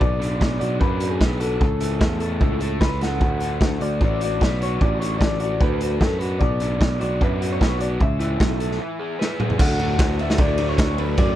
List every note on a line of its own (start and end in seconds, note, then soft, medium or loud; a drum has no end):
0.00 0.39 B1 medium
0.00 1.01 B2 medium
0.00 1.20 B4 medium
0.00 0.58 D5 medium
0.00 kick medium
0.20 0.79 D4 medium
0.20 closed hi-hat medium
0.40 0.60 B1 medium
0.40 1.64 B3 medium
0.40 kick loud
0.40 snare loud
0.59 0.79 B1 medium
0.59 0.99 F#4 medium
0.59 0.80 D5 medium
0.59 closed hi-hat medium
0.80 1.18 F#2 medium
0.80 1.61 D4 medium
0.80 1.12 B4 medium
0.80 kick medium
1.00 1.38 F#4 medium
1.00 closed hi-hat medium
1.11 1.41 G#4 medium
1.20 1.58 B1 medium
1.20 1.64 B4 medium
1.20 kick medium
1.20 snare medium
1.39 1.60 F#4 medium
1.39 1.62 A4 medium
1.39 closed hi-hat medium
1.61 1.99 C#2 medium
1.61 2.61 C#3 medium
1.61 2.86 A4 medium
1.61 kick medium
1.80 2.40 E4 medium
1.80 closed hi-hat medium
2.01 2.39 E2 medium
2.01 3.62 A3 medium
2.01 kick loud
2.01 snare medium
2.20 2.61 A4 medium
2.20 closed hi-hat medium
2.41 2.79 C#2 medium
2.41 3.21 E4 medium
2.41 kick medium
2.60 3.02 A4 medium
2.60 closed hi-hat medium
2.81 3.19 C#2 medium
2.81 3.01 B4 medium
2.81 3.65 B4 medium
2.81 kick medium
2.81 snare medium
3.01 3.81 A4 medium
3.01 3.78 F#5 medium
3.01 snare medium
3.01 closed hi-hat medium
3.20 3.58 D2 medium
3.20 4.21 D3 medium
3.20 kick medium
3.40 4.02 D4 medium
3.40 closed hi-hat medium
3.61 3.80 D2 medium
3.61 4.61 A3 medium
3.61 kick loud
3.61 snare loud
3.81 4.00 D2 medium
3.81 4.21 F#4 medium
3.81 4.02 D5 medium
3.81 closed hi-hat medium
4.01 4.39 A1 medium
4.01 5.01 D4 medium
4.01 4.23 D5 medium
4.01 kick medium
4.21 4.60 F#4 medium
4.21 4.60 D5 medium
4.21 closed hi-hat medium
4.41 4.79 B1 medium
4.41 6.01 B4 medium
4.41 kick medium
4.41 snare medium
4.61 5.40 F#4 medium
4.61 4.82 C#5 medium
4.61 closed hi-hat medium
4.81 5.19 A1 medium
4.81 5.81 D3 medium
4.81 5.00 D5 medium
4.81 kick medium
5.00 5.60 D4 medium
5.00 5.18 C#5 medium
5.00 closed hi-hat medium
5.18 5.58 A1 medium
5.18 6.21 A3 medium
5.18 5.38 D5 medium
5.18 kick medium
5.18 snare loud
5.40 5.81 F#4 medium
5.40 5.61 D5 medium
5.40 closed hi-hat medium
5.61 5.98 D2 medium
5.61 6.41 D4 medium
5.61 6.00 B4 medium
5.61 kick medium
5.81 6.20 F#4 medium
5.81 closed hi-hat medium
6.00 6.38 F#2 medium
6.00 6.19 A4 medium
6.00 7.60 B4 medium
6.00 kick medium
6.00 snare medium
6.19 6.41 F#4 medium
6.19 6.40 B4 medium
6.19 closed hi-hat medium
6.39 6.78 B1 medium
6.39 7.40 B2 medium
6.39 7.00 D5 medium
6.39 kick medium
6.60 7.19 D4 medium
6.60 closed hi-hat medium
6.80 6.99 B1 medium
6.80 8.02 B3 medium
6.80 kick medium
6.80 snare loud
7.00 7.20 B1 medium
7.00 7.39 F#4 medium
7.00 7.21 D5 medium
7.00 closed hi-hat medium
7.20 7.58 F#2 medium
7.20 8.00 D4 medium
7.20 7.52 B4 medium
7.20 kick medium
7.41 7.78 F#4 medium
7.41 closed hi-hat medium
7.52 7.80 C#5 medium
7.60 7.98 B1 medium
7.60 8.02 B4 medium
7.60 kick medium
7.60 snare medium
7.79 8.00 F#4 medium
7.79 7.86 D5 medium
7.79 closed hi-hat medium
7.99 8.38 C#2 medium
7.99 8.79 C#3 medium
7.99 9.17 E5 medium
7.99 kick medium
8.19 8.79 E4 medium
8.19 closed hi-hat medium
8.39 8.77 B1 medium
8.39 8.79 A3 medium
8.39 kick medium
8.39 snare loud
8.60 8.80 A4 medium
8.60 closed hi-hat medium
8.71 snare soft
8.79 9.59 E3 medium
9.00 9.39 G#4 medium
9.19 9.59 B4 medium
9.19 snare soft
9.40 9.59 G#4 medium
9.40 mid tom medium
9.50 floor tom medium
9.59 9.97 D2 loud
9.59 9.79 D3 medium
9.59 9.80 F#3 medium
9.59 9.80 A3 medium
9.59 9.81 D4 loud
9.59 10.21 F#5 medium
9.59 kick loud
9.59 crash loud
9.79 9.98 D3 medium
9.79 9.99 F#3 medium
9.79 10.00 A3 medium
9.79 10.00 D4 medium
9.79 ride medium
9.99 10.36 D2 medium
9.99 10.19 D3 medium
9.99 10.20 F#3 medium
9.99 10.21 A3 loud
9.99 10.21 D4 medium
9.99 kick loud
9.99 snare loud
9.99 ride loud
10.19 10.39 D3 medium
10.19 10.41 F#3 medium
10.19 10.41 A3 medium
10.19 10.42 D4 medium
10.19 10.40 E5 medium
10.19 ride medium
10.30 snare medium
10.38 10.76 D2 loud
10.38 10.58 D3 loud
10.38 10.60 F#3 loud
10.38 10.59 A3 loud
10.38 10.68 D5 medium
10.38 kick loud
10.38 ride medium
10.42 10.61 D4 loud
10.58 10.78 D3 medium
10.58 10.79 F#3 medium
10.58 10.79 A3 medium
10.58 10.81 D4 medium
10.58 ride medium
10.69 10.99 C#5 medium
10.78 11.15 D2 medium
10.78 10.97 D3 medium
10.78 10.98 F#3 loud
10.78 10.98 A3 loud
10.78 10.99 D4 loud
10.78 kick loud
10.78 snare loud
10.78 ride loud
10.98 11.17 D3 medium
10.98 11.19 F#3 medium
10.98 11.18 A3 medium
10.98 11.20 D4 loud
10.98 11.17 B4 medium
10.98 ride medium
11.17 11.35 F#2 loud
11.17 11.35 D3 loud
11.17 11.35 F#3 medium
11.17 11.35 A3 loud
11.17 11.35 D4 loud
11.17 11.35 D5 loud
11.17 kick loud
11.17 ride loud